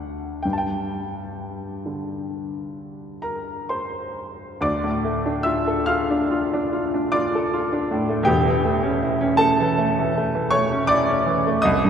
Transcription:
0.00 0.41 D2 soft
0.00 0.41 D4 soft
0.00 0.43 F#5 medium
0.43 4.61 G2 soft
0.43 0.51 G5 medium
0.53 0.60 A5 soft
0.58 3.24 G5 medium
1.86 4.65 D3 soft
3.22 3.68 A#4 soft
3.22 3.71 A#5 medium
3.69 4.59 C5 soft
3.69 4.63 C6 medium
4.61 8.24 D2 medium
4.61 5.42 D5 medium
4.61 5.46 D6 medium
4.84 5.18 A2 soft
5.05 5.38 A3 soft
5.26 5.60 D4 soft
5.43 5.80 F4 medium
5.43 5.85 E5 medium
5.43 5.88 E6 medium
5.68 6.02 A4 medium
5.86 6.24 F4 medium
5.86 7.09 F5 medium
5.86 7.13 F6 medium
6.11 6.45 D4 medium
6.31 6.66 F4 medium
6.54 6.87 D4 medium
6.73 7.06 F4 medium
6.94 7.26 D4 medium
7.12 7.46 F4 medium
7.12 8.25 D5 medium
7.12 8.29 D6 medium
7.35 7.66 A4 medium
7.54 7.85 F4 medium
7.73 8.03 D4 soft
7.91 8.22 A2 medium
8.09 8.29 A3 medium
8.23 11.58 E1 medium
8.23 11.57 E2 medium
8.23 9.36 G4 medium
8.23 9.39 G5 medium
8.46 8.77 E3 medium
8.65 8.96 A3 medium
8.83 9.14 C#4 medium
9.02 9.33 E4 medium
9.21 9.52 C#4 medium
9.37 9.71 A3 medium
9.37 10.48 A4 medium
9.37 10.51 A5 loud
9.60 9.90 E3 medium
9.78 10.09 A3 medium
9.99 10.28 E3 medium
10.17 10.46 A3 medium
10.35 10.64 E3 medium
10.51 10.82 A3 medium
10.51 10.86 C#5 medium
10.51 10.88 C#6 loud
10.71 11.01 C#4 medium
10.87 11.20 E4 medium
10.87 11.60 D5 medium
10.87 11.63 D6 loud
11.08 11.38 C#4 medium
11.26 11.57 E3 medium
11.47 11.65 A3 medium
11.62 11.90 C2 medium
11.62 11.90 D#5 medium
11.62 11.90 D#6 loud
11.85 11.90 G2 medium

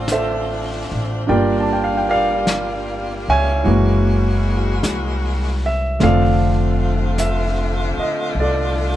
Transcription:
0.00 0.86 A1 medium
0.00 1.27 D3 soft
0.00 1.23 F3 medium
0.00 1.27 F3 soft
0.00 1.28 A3 soft
0.00 1.23 C4 medium
0.00 1.28 C4 soft
0.00 1.25 D4 soft
0.00 3.60 D4 medium
0.00 1.25 F4 medium
0.00 0.11 A4 medium
0.00 0.14 D5 medium
0.08 1.25 C5 medium
0.08 brush sweep soft
0.08 snare soft
0.08 hi-hat pedal soft
0.12 1.25 A4 medium
0.12 1.25 E5 medium
0.92 1.26 A1 medium
1.26 3.24 G1 medium
1.26 3.62 G3 medium
1.26 3.65 G3 soft
1.26 5.82 A#3 medium
1.26 3.63 A#3 soft
1.26 3.64 D4 soft
1.26 3.62 F4 medium
1.26 3.66 F4 medium
1.26 2.08 A#4 medium
1.26 2.08 D5 medium
1.26 1.58 G5 medium
1.26 brush sweep soft
1.60 1.72 A5 medium
1.73 1.84 G5 medium
1.84 1.96 F5 medium
1.97 2.09 G5 medium
2.09 3.61 A#4 soft
2.09 3.61 D5 medium
2.09 3.32 F5 medium
2.47 brush sweep soft
2.47 snare soft
2.47 hi-hat pedal soft
3.28 3.63 C#2 medium
3.28 5.60 C#5 medium
3.28 5.60 E5 medium
3.28 5.71 G#5 loud
3.63 4.79 F#1 medium
3.63 5.99 E3 soft
3.63 5.82 E3 medium
3.63 5.82 G#3 medium
3.63 6.00 G#3 soft
3.63 6.00 A#3 soft
3.63 5.82 F#4 medium
3.63 6.00 F#4 medium
3.63 brush sweep soft
4.83 5.96 C2 medium
4.83 brush sweep soft
4.83 snare soft
4.83 hi-hat pedal medium
5.66 5.99 E5 medium
5.99 7.94 F1 medium
5.99 8.96 D3 medium
5.99 8.96 A3 medium
5.99 8.96 A3 soft
5.99 8.32 C4 medium
5.99 8.96 C4 soft
5.99 8.96 F4 medium
5.99 8.32 A4 medium
5.99 8.32 D5 medium
5.99 brush sweep soft
5.99 snare soft
6.03 7.22 F5 medium
7.18 7.94 E5 medium
7.18 brush sweep soft
7.18 snare soft
7.18 hi-hat pedal soft
7.98 8.33 D#5 medium
7.98 muted upright bass stroke soft
8.34 8.96 C2 medium
8.34 8.96 D4 medium
8.34 brush sweep soft
8.40 8.96 A4 soft
8.40 8.96 D5 medium

